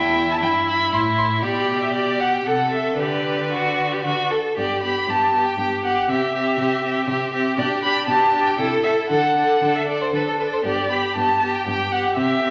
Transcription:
0.00 0.43 E2 soft
0.00 0.39 E4 soft
0.00 1.42 E4 medium
0.00 0.28 G5 medium
0.31 0.35 A5 medium
0.40 0.93 G2 soft
0.40 0.90 E4 soft
0.40 0.51 G5 medium
0.68 0.92 B5 medium
0.91 1.44 A2 soft
0.91 1.44 E4 soft
0.91 1.01 C6 medium
1.18 1.26 C6 medium
1.42 2.45 B2 soft
1.42 1.93 G4 soft
1.42 2.43 G4 soft
1.42 1.83 D5 medium
1.82 1.93 E5 medium
1.93 2.48 G4 soft
1.93 2.21 D5 medium
2.20 2.36 F#5 medium
2.34 2.46 G5 soft
2.45 2.97 C3 soft
2.45 2.98 A4 soft
2.45 3.01 A4 soft
2.45 2.72 F#5 medium
2.73 2.98 E5 soft
2.98 4.03 D3 soft
2.98 3.47 G4 soft
2.98 4.29 B4 soft
2.98 4.29 D5 soft
3.52 3.94 F#4 soft
3.93 4.04 G4 soft
4.04 4.13 D3 soft
4.04 4.32 F#4 soft
4.31 4.57 A4 soft
4.57 5.00 G2 soft
4.57 4.83 B3 soft
4.57 4.82 G4 soft
4.57 4.81 D5 soft
4.83 5.08 B3 soft
4.83 5.08 G4 soft
4.83 5.11 B5 soft
5.08 5.50 G2 soft
5.08 5.33 B3 soft
5.08 5.33 G4 soft
5.08 5.46 A5 medium
5.34 5.58 B3 soft
5.34 5.59 G4 soft
5.47 5.58 G5 soft
5.57 6.00 G2 soft
5.57 5.83 B3 soft
5.57 5.84 G4 soft
5.57 5.67 G5 medium
5.84 6.08 B3 soft
5.84 6.09 G4 soft
5.84 6.10 F#5 soft
6.09 6.51 C3 soft
6.09 6.33 C4 soft
6.09 6.33 G4 soft
6.09 7.33 E5 medium
6.34 6.58 C4 soft
6.34 6.59 G4 soft
6.58 7.00 C3 soft
6.58 6.83 C4 soft
6.58 6.83 G4 soft
6.83 7.07 C4 soft
6.83 7.08 G4 soft
7.07 7.49 C3 soft
7.07 7.32 C4 soft
7.07 7.33 G4 soft
7.33 7.57 C4 soft
7.33 7.58 G4 soft
7.58 8.00 B2 medium
7.58 7.82 D4 soft
7.58 7.83 G4 soft
7.58 7.66 D5 medium
7.83 8.07 D4 soft
7.83 8.08 G4 soft
7.83 8.06 B5 medium
8.07 8.51 B2 medium
8.07 8.32 D4 soft
8.07 8.33 G4 soft
8.07 8.47 A5 medium
8.33 8.58 D4 soft
8.33 8.59 G4 soft
8.46 8.57 G5 medium
8.58 9.02 C3 soft
8.58 8.84 E4 soft
8.58 8.84 A4 soft
8.58 8.66 G5 medium
8.83 9.10 E4 soft
8.83 9.09 A4 soft
8.83 8.91 E5 medium
9.09 9.54 D3 medium
9.09 9.36 D4 soft
9.09 9.35 A4 soft
9.09 9.77 F#5 medium
9.36 9.61 D4 soft
9.36 9.61 A4 soft
9.62 10.05 D3 medium
9.62 9.86 D4 soft
9.62 9.87 A4 soft
9.75 9.87 E5 soft
9.87 10.12 D4 soft
9.87 10.12 A4 soft
9.87 10.03 D5 medium
10.02 10.14 C5 soft
10.13 10.57 D3 soft
10.13 10.38 D4 soft
10.13 10.38 A4 soft
10.13 10.20 B4 medium
10.28 10.33 A4 soft
10.39 10.63 D4 soft
10.39 10.64 A4 soft
10.39 10.45 B4 soft
10.53 10.58 C5 medium
10.64 11.08 G2 soft
10.64 10.89 B3 soft
10.64 10.89 G4 soft
10.64 10.92 D5 soft
10.90 11.15 B3 soft
10.90 11.16 G4 soft
10.90 11.15 B5 soft
11.16 11.59 G2 soft
11.16 11.41 B3 soft
11.16 11.42 G4 soft
11.16 11.56 A5 medium
11.41 11.65 B3 soft
11.41 11.67 G4 soft
11.55 11.66 G5 soft
11.66 12.09 G2 soft
11.66 11.91 B3 soft
11.66 11.92 G4 soft
11.66 11.94 G5 medium
11.92 12.16 B3 soft
11.92 12.17 G4 soft
11.92 12.16 F#5 medium
12.17 12.50 C3 medium
12.17 12.41 C4 soft
12.17 12.41 G4 soft
12.17 12.50 E5 medium
12.42 12.50 C4 soft
12.42 12.50 G4 soft

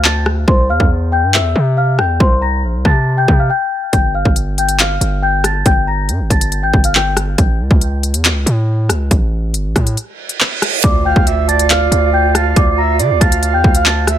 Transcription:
0.00 0.45 D2 loud
0.04 0.23 A5 medium
0.04 0.23 A6 medium
0.04 clap loud
0.26 cross-stick loud
0.48 0.71 C2 loud
0.48 0.66 C5 medium
0.48 0.66 C6 medium
0.48 kick loud
0.69 0.79 E2 loud
0.69 0.88 F5 medium
0.69 0.88 F6 medium
0.80 1.25 E2 loud
0.80 kick medium
1.12 1.30 G5 medium
1.12 1.31 G6 medium
1.23 1.41 G2 loud
1.34 1.75 E5 medium
1.34 1.75 E6 medium
1.34 clap loud
1.39 1.55 E2 loud
1.56 2.00 C3 loud
1.77 1.95 F5 medium
1.77 1.96 F6 medium
1.98 2.19 E2 loud
1.98 2.17 G5 medium
1.98 2.17 G6 medium
1.98 cross-stick loud
2.20 2.65 C2 loud
2.20 2.39 C5 medium
2.20 2.38 C6 medium
2.20 kick loud
2.42 2.60 A#5 medium
2.42 2.60 A#6 medium
2.63 2.76 A#1 loud
2.74 2.85 C2 loud
2.85 3.26 C3 loud
2.85 3.16 A5 medium
2.85 3.16 A6 medium
2.85 kick medium
2.85 cross-stick loud
3.17 3.35 G5 medium
3.17 3.36 G6 medium
3.28 3.50 C3 loud
3.28 kick loud
3.39 3.48 F5 medium
3.39 3.48 F6 medium
3.50 3.90 G5 medium
3.50 3.91 G6 medium
3.93 4.24 G1 loud
3.93 4.11 G5 medium
3.93 4.11 G6 medium
3.93 kick loud
3.93 closed hi-hat medium
4.14 4.33 F5 medium
4.14 4.33 F6 medium
4.25 4.98 G1 loud
4.25 kick medium
4.36 closed hi-hat medium
4.58 4.76 G5 medium
4.58 4.77 G6 medium
4.58 closed hi-hat medium
4.69 closed hi-hat medium
4.79 5.20 F5 medium
4.79 5.21 F6 medium
4.79 clap loud
4.79 closed hi-hat medium
5.01 5.63 G1 loud
5.01 closed hi-hat medium
5.22 5.41 G5 medium
5.22 5.41 G6 medium
5.44 5.62 A5 medium
5.44 cross-stick loud
5.44 closed hi-hat medium
5.66 6.10 G1 loud
5.66 5.84 G5 medium
5.66 5.84 G6 medium
5.66 kick loud
5.66 closed hi-hat medium
5.87 6.05 A#5 medium
5.87 6.06 A#6 medium
6.09 6.21 G2 loud
6.09 closed hi-hat medium
6.20 6.30 G1 medium
6.30 6.64 G1 loud
6.30 6.61 A5 medium
6.30 6.61 A6 medium
6.30 kick loud
6.30 closed hi-hat medium
6.41 closed hi-hat medium
6.52 closed hi-hat medium
6.63 6.73 A1 loud
6.63 6.81 G5 medium
6.63 6.81 G6 medium
6.73 7.36 G1 loud
6.73 kick loud
6.84 6.93 F5 medium
6.84 6.94 F6 medium
6.84 closed hi-hat medium
6.95 7.14 G5 medium
6.95 clap loud
7.17 cross-stick loud
7.17 closed hi-hat medium
7.38 7.61 A1 loud
7.38 kick loud
7.38 closed hi-hat medium
7.60 7.70 C#2 loud
7.71 8.15 C#2 loud
7.71 kick loud
7.81 closed hi-hat medium
8.03 closed hi-hat medium
8.14 8.32 E2 loud
8.14 closed hi-hat medium
8.25 clap loud
8.25 closed hi-hat medium
8.30 8.45 C#2 loud
8.46 8.91 A2 loud
8.46 closed hi-hat medium
8.89 9.10 C#2 loud
8.89 cross-stick loud
8.89 closed hi-hat medium
9.11 9.56 A1 loud
9.11 kick loud
9.11 closed hi-hat medium
9.54 9.67 G1 loud
9.54 closed hi-hat medium
9.65 9.75 A1 loud
9.76 9.96 A2 loud
9.76 kick loud
9.76 cross-stick loud
9.76 closed hi-hat medium
9.87 closed hi-hat medium
9.97 closed hi-hat medium
9.97 reverse cymbal medium
10.29 closed hi-hat medium
10.40 clap loud
10.62 cross-stick loud
10.62 closed hi-hat medium
10.84 11.15 D2 loud
10.84 14.18 F4 medium
10.84 14.18 D5 medium
10.84 11.02 D5 medium
10.84 14.18 F5 medium
10.84 11.02 D6 medium
10.84 kick loud
10.84 closed hi-hat medium
10.84 impact medium
11.05 11.26 F5 medium
11.05 11.23 G5 medium
11.05 11.24 G6 medium
11.16 11.89 D2 loud
11.16 kick loud
11.27 11.47 E5 medium
11.27 closed hi-hat medium
11.48 12.31 D5 medium
11.48 11.66 A5 medium
11.48 11.67 A6 medium
11.48 closed hi-hat medium
11.59 closed hi-hat loud
11.70 12.10 F5 medium
11.70 12.11 F6 medium
11.70 clap loud
11.70 closed hi-hat medium
11.92 12.54 D2 loud
11.92 closed hi-hat medium
12.13 12.31 G5 medium
12.13 12.32 G6 medium
12.35 12.55 F5 medium
12.35 12.53 A5 medium
12.35 12.53 A6 medium
12.35 cross-stick loud
12.35 closed hi-hat medium
12.56 13.01 D2 loud
12.56 12.75 D5 medium
12.56 12.75 D6 medium
12.56 kick loud
12.56 closed hi-hat medium
12.78 12.98 E5 medium
12.78 12.96 A#5 medium
12.78 12.96 A#6 medium
12.99 13.12 D3 loud
12.99 13.20 D5 medium
12.99 closed hi-hat medium
13.10 13.20 D2 loud
13.20 13.55 D2 loud
13.20 14.03 F5 medium
13.20 13.51 A5 medium
13.20 13.52 A6 medium
13.20 kick loud
13.20 closed hi-hat medium
13.32 closed hi-hat medium
13.43 closed hi-hat medium
13.53 13.64 E2 loud
13.53 13.72 G5 medium
13.53 13.72 G6 medium
13.64 14.18 D2 loud
13.64 kick loud
13.75 13.84 F5 medium
13.75 13.85 F6 medium
13.75 closed hi-hat medium
13.86 14.04 A5 medium
13.86 14.04 A6 medium
13.86 clap loud
14.07 14.18 E5 medium
14.07 cross-stick loud
14.07 closed hi-hat medium

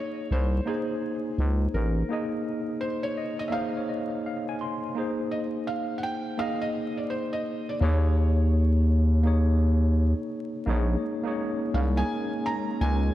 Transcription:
0.00 0.48 A#3 medium
0.00 0.49 D#4 medium
0.00 0.50 G#4 medium
0.00 0.32 C#5 loud
0.00 0.50 C#5 medium
0.31 0.60 C2 loud
0.31 0.68 C5 medium
0.66 1.92 A#3 medium
0.66 1.92 D#4 medium
0.66 1.34 G#4 medium
0.66 1.93 G#4 medium
0.66 1.94 C5 medium
1.38 1.68 C#2 medium
1.74 2.03 A1 medium
1.74 2.84 A#4 medium
2.09 3.35 A#3 medium
2.09 3.35 D#4 medium
2.09 3.36 G#4 medium
2.09 3.16 D#5 medium
2.81 3.04 C5 medium
3.03 3.36 C#5 medium
3.17 3.50 D#5 medium
3.39 3.43 D#5 loud
3.48 4.77 A#3 medium
3.48 4.77 D#4 medium
3.48 3.52 E5 medium
3.52 4.78 G#4 medium
3.52 4.79 C5 medium
3.52 3.73 F5 medium
3.52 4.55 F5 loud
3.77 3.88 C#5 medium
3.89 4.22 D#5 medium
4.26 4.46 F5 medium
4.49 4.60 G#5 medium
4.61 4.93 C6 medium
4.95 6.21 A#3 medium
4.95 6.21 D#4 medium
4.95 6.22 G#4 medium
4.95 6.23 C5 medium
5.31 5.39 D#5 medium
5.67 5.95 F5 loud
5.98 6.03 F#5 medium
6.03 6.39 G5 loud
6.37 7.63 A#3 medium
6.37 7.64 D#4 medium
6.37 7.65 G#4 medium
6.37 6.62 F5 loud
6.41 7.65 D#5 medium
6.61 6.98 D#5 loud
6.97 7.10 D5 medium
7.10 7.33 C5 medium
7.33 7.69 D#5 medium
7.69 7.74 D5 medium
7.80 10.14 D#2 loud
7.80 9.06 A#3 medium
7.80 9.07 D#4 medium
7.80 9.08 G#4 medium
7.80 9.20 C#5 medium
7.80 9.08 C#5 medium
9.23 10.49 A#3 medium
9.23 10.50 D#4 medium
9.23 10.50 G#4 medium
9.23 10.51 C#5 medium
10.66 10.96 A#1 loud
10.66 13.14 G#3 medium
10.66 11.15 A#3 loud
10.66 13.14 A#3 medium
10.66 13.14 C#4 medium
10.66 11.15 D#4 medium
10.66 11.16 G#4 medium
10.66 11.17 C#5 medium
11.23 11.82 A#3 medium
11.23 11.83 D#4 medium
11.23 11.83 G#4 medium
11.28 11.84 C#5 medium
11.74 12.03 C2 loud
11.74 11.79 F5 medium
11.96 13.14 A#3 medium
11.96 13.14 D#4 medium
11.96 13.14 G#4 medium
11.96 13.14 A#4 medium
11.96 12.47 G#5 loud
12.46 12.82 A#5 loud
12.81 13.10 C#2 loud
12.81 13.14 G#5 loud

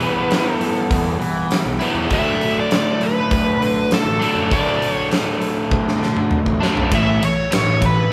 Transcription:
0.00 1.78 E3 medium
0.00 1.79 G3 medium
0.00 1.79 B3 medium
0.00 1.78 E4 medium
0.00 0.56 B4 medium
0.00 open hi-hat soft
0.31 snare loud
0.31 open hi-hat medium
0.56 1.17 A4 medium
0.61 open hi-hat soft
0.90 1.15 E2 medium
0.90 kick loud
0.90 open hi-hat medium
1.20 1.57 E3 medium
1.20 open hi-hat soft
1.51 snare loud
1.51 open hi-hat medium
1.66 1.78 B1 medium
1.79 2.09 E3 medium
1.79 2.10 G3 medium
1.79 2.09 B3 medium
1.79 2.08 E4 medium
1.79 open hi-hat soft
1.95 2.08 E2 medium
2.10 2.35 D2 medium
2.10 4.19 D3 medium
2.10 4.19 F#3 medium
2.10 4.21 A3 medium
2.10 4.19 D4 medium
2.10 kick medium
2.10 open hi-hat medium
2.14 2.59 E5 loud
2.41 open hi-hat soft
2.60 3.04 D5 medium
2.71 snare loud
2.71 open hi-hat medium
3.01 3.93 B4 medium
3.01 open hi-hat soft
3.31 3.56 D2 medium
3.31 kick loud
3.31 open hi-hat medium
3.60 3.97 D3 medium
3.60 open hi-hat soft
3.91 4.54 A4 medium
3.91 snare loud
3.91 open hi-hat medium
4.05 4.18 A1 medium
4.20 4.49 D3 medium
4.20 4.50 F#3 medium
4.20 4.52 A3 medium
4.20 4.49 D4 medium
4.20 open hi-hat medium
4.35 4.48 F#2 medium
4.50 4.76 D2 medium
4.50 6.59 D3 medium
4.50 6.60 F#3 medium
4.50 6.60 A3 medium
4.50 6.59 D4 medium
4.50 4.93 D5 medium
4.50 kick loud
4.50 open hi-hat medium
4.82 open hi-hat soft
4.93 5.08 C#5 medium
5.11 snare medium
5.11 open hi-hat medium
5.42 open hi-hat soft
5.70 5.95 D2 medium
5.70 kick loud
5.70 high tom medium
5.88 snare medium
5.99 6.37 D3 medium
5.99 snare medium
6.17 mid tom medium
6.31 mid tom medium
6.45 6.58 A1 medium
6.45 kick medium
6.58 6.82 A3 medium
6.58 6.90 A3 medium
6.58 6.84 B3 medium
6.58 6.89 D4 medium
6.62 6.91 D3 medium
6.62 6.90 F#3 medium
6.62 6.85 C4 medium
6.62 6.86 D4 medium
6.62 snare medium
6.70 6.88 E4 medium
6.70 6.89 F4 medium
6.75 6.88 F#2 medium
6.75 6.90 G4 medium
6.75 6.92 A4 medium
6.75 floor tom medium
6.80 6.93 B4 medium
6.80 6.94 C5 medium
6.86 8.13 A3 medium
6.86 8.13 E4 medium
6.86 8.13 C#5 medium
6.86 6.96 D5 soft
6.91 7.16 A1 medium
6.91 7.19 A2 medium
6.91 7.20 E3 medium
6.91 7.20 A3 medium
6.91 7.24 E5 loud
6.91 kick medium
6.91 ride medium
7.21 7.48 A2 medium
7.21 7.48 E3 medium
7.21 7.53 C#5 medium
7.21 ride medium
7.51 7.78 A2 medium
7.51 7.79 E3 medium
7.51 7.84 C#5 loud
7.51 snare loud
7.51 ride medium
7.65 8.02 A1 medium
7.82 8.09 A2 medium
7.82 8.08 E3 medium
7.82 8.13 B4 medium
7.82 kick medium
7.82 ride medium

